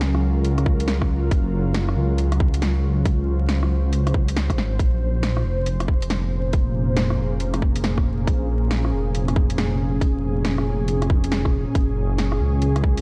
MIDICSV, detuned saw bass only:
0, 0, Header, 1, 2, 480
1, 0, Start_track
1, 0, Key_signature, -5, "minor"
1, 0, Tempo, 434783
1, 1453, Time_signature, 4, 2, 24, 8
1, 14365, End_track
2, 0, Start_track
2, 0, Title_t, "Detuned saw bass"
2, 0, Program_c, 0, 39
2, 0, Note_on_c, 0, 37, 89
2, 235, Note_off_c, 0, 37, 0
2, 242, Note_on_c, 0, 37, 85
2, 1436, Note_off_c, 0, 37, 0
2, 1449, Note_on_c, 0, 30, 95
2, 2159, Note_off_c, 0, 30, 0
2, 2172, Note_on_c, 0, 37, 84
2, 4081, Note_off_c, 0, 37, 0
2, 4094, Note_on_c, 0, 37, 86
2, 5053, Note_on_c, 0, 32, 88
2, 5069, Note_off_c, 0, 37, 0
2, 5278, Note_off_c, 0, 32, 0
2, 6013, Note_on_c, 0, 29, 87
2, 7922, Note_off_c, 0, 29, 0
2, 7929, Note_on_c, 0, 29, 87
2, 9119, Note_off_c, 0, 29, 0
2, 9135, Note_on_c, 0, 34, 100
2, 9842, Note_off_c, 0, 34, 0
2, 9856, Note_on_c, 0, 29, 85
2, 11763, Note_off_c, 0, 29, 0
2, 11773, Note_on_c, 0, 29, 85
2, 12249, Note_off_c, 0, 29, 0
2, 12256, Note_on_c, 0, 29, 104
2, 12866, Note_off_c, 0, 29, 0
2, 12972, Note_on_c, 0, 30, 96
2, 13681, Note_off_c, 0, 30, 0
2, 13694, Note_on_c, 0, 37, 89
2, 14365, Note_off_c, 0, 37, 0
2, 14365, End_track
0, 0, End_of_file